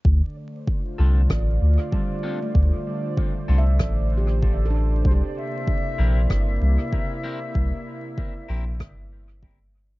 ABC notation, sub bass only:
X:1
M:4/4
L:1/8
Q:"Swing 16ths" 1/4=96
K:Dm
V:1 name="Sub bass" clef=bass
D,, z2 C,, A,,, D,, z2 | D,, z2 C,, A,,,4 | C,, z2 B,,, G,,, C,, z2 | C,, z2 B,,, G,,,4 |]